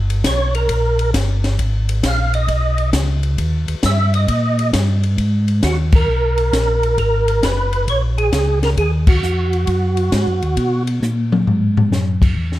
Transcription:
Already playing: G1
0.10 ride
0.24 B1 C#5, kick, snare, hi-hat pedal, ride
0.55 A#4, ride
0.69 A#1, kick, ride
0.99 ride
1.14 G1, kick, snare, hi-hat pedal, ride
1.44 snare, ride
1.59 G#1, kick, ride
1.89 ride
2.03 A#1 F5, kick, snare, hi-hat pedal, ride
2.34 D#5, ride
2.48 B1, kick, ride
2.78 ride
2.93 C#2, kick, snare, hi-hat pedal, ride
3.23 ride
3.38 D#2, kick, ride
3.68 D#2, ride
3.83 G2 E5, kick, snare, hi-hat pedal, ride
4.14 D#5, ride
4.28 A#2, kick, ride
4.59 ride
4.73 G2, kick, snare, hi-hat pedal, ride
5.03 ride
5.18 G#2, kick, ride
5.48 ride
5.63 D#2 F#4, kick, snare, hi-hat pedal, ride
5.92 A#4, kick, crash
6.08 B1
6.38 ride
6.53 A#1, kick, snare, hi-hat pedal, ride
6.83 ride
6.98 G#1 A#4, kick, ride
7.28 ride
7.43 F#1 B4, kick, snare, hi-hat pedal, ride
7.73 ride
7.87 A#1 C#5, kick, ride
8.18 G#4, ride
8.32 C#2, kick, snare, hi-hat pedal, ride
8.63 A#4, snare, ride
8.77 D#2 G#4, kick, ride
9.07 F#4, kick, crash
9.23 F2, hi-hat pedal
9.53 ride
9.67 F#2, kick, ride
9.97 ride
10.12 G#2, kick, snare, hi-hat pedal, ride
10.27 F#2
10.42 D#2, ride
10.57 B2, kick, ride
10.87 ride
11.02 A#2, hi-hat pedal, high tom
11.32 mid tom
11.47 G#2, floor tom
11.77 floor tom
11.91 F#2, snare, hi-hat pedal
12.22 kick, crash
12.36 E2, kick
12.52 snare

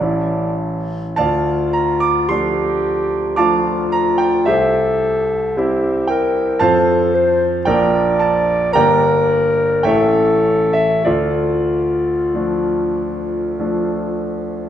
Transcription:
Already playing: D5 F5 A5
0.01 A1 E3 C#4 E4
1.16 D2 F4 D5 F5 A5
1.73 A#5
2.00 D6
2.28 F3 A3 D4 G4 C6
3.36 F3 A3 D4 F4 F5 A5 D6
3.92 A#5
4.18 G5
4.45 C2 G4 A4 C5 E5
5.57 G3 C4 E4 G4
6.07 A#4 G5
6.59 F2 F3 C4 F4 C5 F5 A5
6.64 A4
7.15 C5
7.65 A#1 F3 A#3 D4 A#4 D5 G5
8.19 A5
8.73 G1 G3 A#3 D4 A#4 D5 G5 A#5
9.83 A1 E3 A3 C#4 A4 C#5 E5 G5
10.73 E5
11.05 D2 F4 A4 D5
12.34 F3 A3 D4
13.60 F3 A3 D4

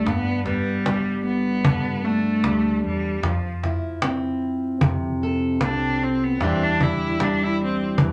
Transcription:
Already playing: A3 D4
0.05 G2, cajon bass, cajon slap
0.09 B3
0.26 cajon slap
0.46 G3 B3, cajon bass, cajon slap
0.86 G3, cajon slap
1.25 B3, cajon slap
1.46 cajon slap
1.65 G2 D3, cajon bass
2.05 A3 D4, cajon slap
2.44 D2 G3, cajon slap
2.84 E2 G3
3.23 F2 F3, cajon bass, cajon slap
3.63 E4, cajon bass, cajon slap
4.02 C4, cajon slap
4.42 cajon slap
4.81 F2 C3, cajon bass
5.21 A4, cajon slap
5.61 C2 C4 D4, cajon slap
6.03 C4
6.24 B3
6.41 E2 E3 G3 C4 D4 E4, cajon bass, cajon slap
6.45 G4
6.64 D4
6.81 D4 E4, cajon bass
7.20 G3 D4, cajon slap
7.44 E4
7.59 cajon slap
7.64 C4
7.98 E2 E3, cajon bass

